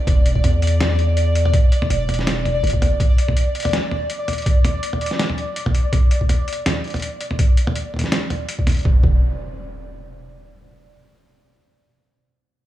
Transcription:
Already playing: synth texture D5
0.07 808-style bass E1, kick, closed hi-hat, mid tom
0.26 closed hi-hat
0.36 kick
0.44 808-style bass E2, closed hi-hat, mid tom
0.62 closed hi-hat
0.67 closed hi-hat
0.81 snare, closed hi-hat, mid tom
0.99 closed hi-hat
1.17 closed hi-hat
1.35 closed hi-hat
1.45 mid tom
1.54 kick, closed hi-hat
1.72 closed hi-hat
1.82 mid tom
1.90 808-style bass E1, closed hi-hat
2.09 closed hi-hat, mid tom
2.14 closed hi-hat
2.19 snare
2.27 snare, closed hi-hat
2.45 closed hi-hat, mid tom
2.63 808-style bass G1, closed hi-hat
2.67 closed hi-hat
2.70 kick, closed hi-hat
2.82 closed hi-hat, mid tom
3.00 kick, closed hi-hat
3.18 closed hi-hat
3.28 kick, mid tom
3.37 closed hi-hat
3.55 closed hi-hat
3.60 closed hi-hat
3.63 closed hi-hat
3.65 closed hi-hat, mid tom
3.67 closed hi-hat
3.69 closed hi-hat
3.71 snare, closed hi-hat
3.73 closed hi-hat
3.76 closed hi-hat
3.91 mid tom
4.10 closed hi-hat
4.28 closed hi-hat, mid tom
4.33 closed hi-hat
4.38 closed hi-hat
4.42 closed hi-hat
4.46 kick, closed hi-hat
4.65 closed hi-hat, mid tom
4.83 closed hi-hat
4.93 mid tom
5.01 closed hi-hat
5.06 closed hi-hat
5.11 snare
5.19 snare, closed hi-hat
5.30 mid tom
5.38 closed hi-hat
5.56 closed hi-hat
5.66 kick, mid tom
5.75 closed hi-hat
5.93 kick, closed hi-hat, mid tom
6.11 closed hi-hat
6.21 kick
6.29 closed hi-hat, mid tom
6.48 closed hi-hat
6.53 closed hi-hat
6.66 snare, closed hi-hat, mid tom
6.84 closed hi-hat
6.88 closed hi-hat
6.90 closed hi-hat
6.94 closed hi-hat, mid tom
6.96 closed hi-hat
7.00 closed hi-hat
7.02 closed hi-hat
7.21 closed hi-hat
7.31 mid tom
7.39 kick, closed hi-hat
7.57 closed hi-hat
7.67 mid tom
7.76 closed hi-hat
7.94 mid tom
7.96 closed hi-hat, mid tom
7.99 mid tom
8.01 snare, mid tom
8.12 snare, closed hi-hat
8.30 closed hi-hat, mid tom
8.49 closed hi-hat
8.59 kick
8.67 closed hi-hat, mid tom
8.69 closed hi-hat
8.72 closed hi-hat
8.74 closed hi-hat
8.77 closed hi-hat
8.79 closed hi-hat
8.81 closed hi-hat
8.83 808-style bass E1, kick, closed hi-hat, impact
9.04 808-style bass E1, kick

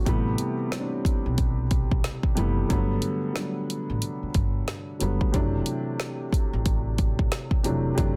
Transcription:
Already playing: upright piano F#4
0.05 upright bass A1, upright piano C3 E3 G3 A3 B3, kick, closed hi-hat
0.38 closed hi-hat
0.70 upright piano E3 G3 A3 C4 C#4, snare, closed hi-hat
0.80 upright piano D4
1.05 kick, closed hi-hat
1.26 upright bass B1
1.38 kick, closed hi-hat
1.71 kick, closed hi-hat
1.91 kick
2.04 snare, closed hi-hat
2.23 kick
2.35 upright bass F#1, upright piano C3 E3 G3 A3 B3, closed hi-hat
2.69 upright bass G1, upright piano D3 F#3 G3 A3 B3, kick, closed hi-hat
3.02 closed hi-hat
3.34 upright piano D3 F#3 G3 A3 D4, snare, closed hi-hat
3.70 closed hi-hat
3.90 upright bass A1
4.02 closed hi-hat
4.23 muted upright bass stroke
4.34 upright bass G1, kick, closed hi-hat
4.68 snare, closed hi-hat
4.99 upright bass F#1, upright piano D3 F#3 G3 A3 B3, closed hi-hat
5.21 kick
5.32 upright bass F#1, upright piano C3 E3 F#3 A3 D4, kick, closed hi-hat
5.66 closed hi-hat
6.00 snare, closed hi-hat
6.33 kick, closed hi-hat
6.53 upright bass A1
6.66 kick, closed hi-hat
6.98 kick, closed hi-hat
7.19 kick
7.32 snare, closed hi-hat
7.51 kick
7.63 upright bass F1, upright piano C3 E3 F#3 A3 D4, closed hi-hat
7.95 upright bass F#1, upright piano C3 E3 F#3 A3 D4, kick, closed hi-hat

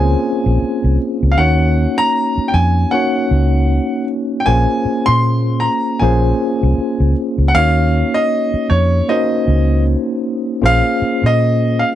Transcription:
Already playing: fingered electric bass C#2, tine electric piano A#3 C4 C#4 F4 G#4 C5 C#5, grand piano G#5
0.46 fingered electric bass A#1
0.62 muted fingered electric bass stroke
0.84 fingered electric bass C2
1.23 fingered electric bass C#2
1.32 grand piano F5
1.37 fingered electric bass D#2, tine electric piano A#3 C#4 D#4 F#4 C#5, grand piano F#5
1.98 grand piano A#5
2.38 muted fingered electric bass stroke
2.48 grand piano G5
2.54 fingered electric bass F2, grand piano G#5
2.91 tine electric piano A#3 C#4 D#4 F#4 C#5, grand piano F#5
3.31 fingered electric bass C#2
4.40 grand piano G5
4.46 fingered electric bass A#1, tine electric piano A#3 C#4 F4 G#4 C5, grand piano G#5
4.85 muted fingered electric bass stroke
5.06 fingered electric bass A#2, grand piano C6
5.60 grand piano A#5
5.99 fingered electric bass A#1, tine electric piano A#3 C#4 F4 G#4, grand piano G#5
6.03 tine electric piano C5
6.63 fingered electric bass C2
6.78 muted fingered electric bass stroke
7.00 fingered electric bass C#2
7.38 fingered electric bass C#2
7.48 grand piano F#5
7.55 fingered electric bass D#2, tine electric piano A#3 C#4 D#4 F#4 C#5, grand piano F5
8.14 grand piano D#5
8.54 muted fingered electric bass stroke
8.70 fingered electric bass F2, grand piano C#5
9.08 tine electric piano A#3 C#4 D#4 F#4 C5, grand piano D#5
9.48 fingered electric bass C#2
10.61 fingered electric bass A#1, tine electric piano A#3 C#4 F4 G#4 C5
10.66 grand piano F5
11.02 muted fingered electric bass stroke
11.23 fingered electric bass A#2, grand piano D#5
11.79 grand piano F5

